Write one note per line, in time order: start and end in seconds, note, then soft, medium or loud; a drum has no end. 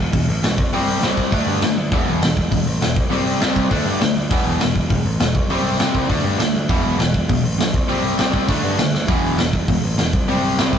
0.00 0.12 E1 medium
0.13 0.27 E1 medium
0.13 0.26 E2 medium
0.13 0.26 B2 medium
0.13 kick loud
0.13 open hi-hat medium
0.29 0.42 A1 medium
0.29 open hi-hat medium
0.43 0.56 B1 medium
0.43 0.57 E2 medium
0.43 0.57 B2 medium
0.43 snare loud
0.43 open hi-hat medium
0.58 0.71 C2 loud
0.58 kick medium
0.58 open hi-hat medium
0.73 0.86 C2 loud
0.73 1.01 C3 medium
0.73 1.02 G3 loud
0.73 1.03 C4 medium
0.73 open hi-hat medium
0.88 1.01 C2 medium
0.88 open hi-hat medium
1.03 1.16 C2 medium
1.03 1.32 C3 medium
1.03 1.32 G3 loud
1.03 1.32 C4 loud
1.03 snare loud
1.03 open hi-hat medium
1.17 1.31 C2 medium
1.17 kick medium
1.17 open hi-hat medium
1.32 1.46 D2 loud
1.32 1.62 D3 medium
1.32 1.62 A3 medium
1.32 1.62 D4 loud
1.32 kick loud
1.32 open hi-hat medium
1.47 1.61 G2 medium
1.47 open hi-hat medium
1.62 1.76 D2 medium
1.62 1.76 D3 medium
1.62 1.76 A3 medium
1.62 snare loud
1.62 open hi-hat medium
1.77 1.91 D2 medium
1.77 open hi-hat medium
1.91 2.06 E1 loud
1.91 2.21 E2 medium
1.91 2.22 B2 medium
1.91 2.22 E3 medium
1.91 kick loud
1.91 open hi-hat medium
2.07 2.21 E1 medium
2.07 open hi-hat soft
2.22 2.36 E1 medium
2.22 2.36 E2 medium
2.22 2.36 B2 medium
2.22 snare loud
2.22 open hi-hat medium
2.36 2.50 E1 medium
2.36 kick medium
2.36 open hi-hat medium
2.52 2.65 E1 medium
2.52 2.65 E2 medium
2.52 2.65 B2 medium
2.52 kick loud
2.52 open hi-hat medium
2.67 2.81 A1 medium
2.67 open hi-hat medium
2.81 2.95 E1 medium
2.81 2.95 E2 medium
2.81 2.95 B2 medium
2.81 snare loud
2.81 open hi-hat medium
2.96 3.10 C2 medium
2.96 kick medium
2.96 open hi-hat medium
3.10 3.25 C2 loud
3.10 3.40 C3 medium
3.10 3.40 G3 medium
3.10 3.41 C4 loud
3.10 open hi-hat medium
3.26 3.40 C2 medium
3.26 open hi-hat medium
3.41 3.55 C2 medium
3.41 3.70 C3 medium
3.41 3.70 G3 loud
3.41 3.71 C4 loud
3.41 snare loud
3.41 open hi-hat medium
3.56 3.70 C2 medium
3.56 kick medium
3.56 open hi-hat medium
3.70 3.85 D2 medium
3.70 4.00 D3 medium
3.70 4.00 A3 medium
3.70 4.01 D4 loud
3.70 kick loud
3.70 open hi-hat medium
3.86 3.99 G2 medium
3.86 open hi-hat medium
4.01 4.15 D2 medium
4.01 4.15 D3 medium
4.01 4.15 A3 medium
4.01 snare loud
4.01 open hi-hat medium
4.16 4.29 D2 medium
4.16 open hi-hat medium
4.30 4.44 E1 loud
4.30 4.60 E2 medium
4.30 4.60 B2 medium
4.30 4.60 E3 loud
4.30 kick loud
4.30 open hi-hat medium
4.45 4.59 E1 medium
4.45 open hi-hat medium
4.60 4.74 E1 medium
4.60 4.74 E2 medium
4.60 4.74 B2 medium
4.60 snare loud
4.60 open hi-hat medium
4.75 4.89 E1 medium
4.75 kick medium
4.75 open hi-hat medium
4.90 5.04 E1 medium
4.90 5.04 E2 medium
4.90 5.04 B2 medium
4.90 kick loud
4.90 open hi-hat medium
5.05 5.19 A1 medium
5.05 open hi-hat medium
5.20 5.34 E1 medium
5.20 5.34 E2 medium
5.20 5.34 B2 medium
5.20 snare loud
5.20 open hi-hat medium
5.35 5.49 C2 medium
5.35 kick loud
5.35 open hi-hat medium
5.50 5.64 C2 loud
5.50 5.79 C3 medium
5.50 5.79 G3 loud
5.50 5.80 C4 loud
5.50 open hi-hat medium
5.65 5.79 C2 medium
5.65 open hi-hat medium
5.79 5.93 C2 medium
5.79 6.09 C3 loud
5.79 6.09 G3 medium
5.79 6.10 C4 loud
5.79 snare loud
5.79 open hi-hat medium
5.94 6.08 C2 medium
5.94 kick medium
5.94 open hi-hat medium
6.09 6.23 D2 medium
6.09 6.38 D3 medium
6.09 6.38 A3 medium
6.09 6.39 D4 medium
6.09 kick loud
6.09 open hi-hat medium
6.24 6.38 G2 medium
6.24 open hi-hat medium
6.38 6.53 D2 medium
6.38 6.53 D3 medium
6.38 6.53 A3 medium
6.38 snare loud
6.38 open hi-hat medium
6.54 6.68 D2 loud
6.54 open hi-hat medium
6.69 6.83 E1 loud
6.69 6.97 E2 loud
6.69 6.98 B2 loud
6.69 6.99 E3 medium
6.69 kick loud
6.69 open hi-hat medium
6.84 6.98 E1 medium
6.84 open hi-hat medium
6.98 7.13 E1 medium
6.98 7.12 E2 medium
6.98 7.13 B2 medium
6.98 snare loud
6.98 open hi-hat medium
7.14 7.28 E1 medium
7.14 kick medium
7.14 open hi-hat medium
7.29 7.43 E1 loud
7.29 7.43 E2 medium
7.29 7.43 B2 medium
7.29 kick loud
7.29 open hi-hat medium
7.44 7.58 A1 medium
7.44 open hi-hat medium
7.59 7.73 B1 medium
7.59 7.72 E2 medium
7.59 7.73 B2 medium
7.59 snare loud
7.59 open hi-hat medium
7.74 7.88 C2 medium
7.74 kick loud
7.74 open hi-hat medium
7.88 8.03 C2 loud
7.88 8.17 C3 medium
7.88 8.18 G3 loud
7.88 8.18 C4 loud
7.88 open hi-hat medium
8.04 8.18 C2 medium
8.04 open hi-hat soft
8.18 8.33 C2 medium
8.18 8.48 C3 medium
8.18 8.48 G3 loud
8.18 8.48 C4 medium
8.18 snare loud
8.18 open hi-hat medium
8.34 8.49 C2 medium
8.34 kick medium
8.34 open hi-hat medium
8.48 8.62 D2 medium
8.48 8.77 D3 medium
8.48 8.77 A3 medium
8.48 8.78 D4 loud
8.48 kick loud
8.48 open hi-hat medium
8.63 8.78 G2 medium
8.63 open hi-hat medium
8.78 8.93 D2 medium
8.78 8.92 D3 medium
8.78 8.92 A3 medium
8.78 snare loud
8.78 open hi-hat medium
8.94 9.07 D2 medium
8.94 snare medium
9.08 9.22 E1 loud
9.08 9.37 E2 loud
9.08 9.37 B2 medium
9.08 9.38 E3 loud
9.08 kick loud
9.08 open hi-hat medium
9.24 9.38 E1 medium
9.24 open hi-hat medium
9.38 9.52 E1 medium
9.38 9.52 E2 medium
9.38 9.52 B2 medium
9.38 snare loud
9.38 open hi-hat medium
9.53 9.67 E1 medium
9.53 kick medium
9.53 open hi-hat medium
9.68 9.82 E1 medium
9.68 9.82 E2 medium
9.68 9.82 B2 medium
9.68 kick loud
9.68 open hi-hat medium
9.83 9.97 A1 medium
9.83 open hi-hat medium
9.98 10.12 E1 medium
9.98 10.11 E2 medium
9.98 10.12 B2 medium
9.98 snare loud
9.98 open hi-hat medium
10.13 10.27 C2 medium
10.13 kick loud
10.13 open hi-hat medium
10.28 10.41 C2 loud
10.28 10.57 C3 medium
10.28 10.57 G3 medium
10.28 10.58 C4 loud
10.28 open hi-hat medium
10.43 10.56 C2 medium
10.43 open hi-hat medium
10.58 10.72 C2 medium
10.58 10.79 C3 loud
10.58 10.79 G3 loud
10.58 10.79 C4 loud
10.58 snare loud
10.58 open hi-hat medium
10.73 10.79 C2 medium
10.73 kick medium
10.73 open hi-hat medium